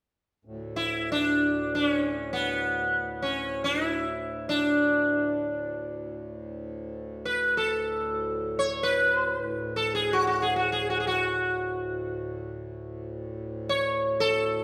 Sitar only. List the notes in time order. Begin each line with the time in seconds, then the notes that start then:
0.76 E4
1.12 D4
1.75 D4
1.90 C#4
2.33 B3
3.22 C#4
3.64 E4
4.49 D4
7.25 B4
7.57 A4
8.59 C#5
8.83 B4
9.76 A4
9.95 G#4
10.13 F#4
10.27 F#4
10.42 G#4
10.56 F#4
10.72 G#4
10.90 F#4
11.00 G#4
11.07 F#4
13.69 C#5
14.20 A4